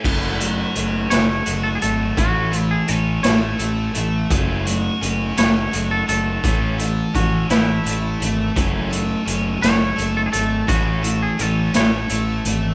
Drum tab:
CC |x-----|------|------|------|
HH |-xxxxx|xxxxxx|xxxxxx|xxxxxx|
SD |---o--|---o--|---o--|---o--|
BD |o-----|o-----|o-----|o-o---|

CC |------|------|
HH |xxxxxx|xxxxxx|
SD |---o--|---o--|
BD |o-----|o-----|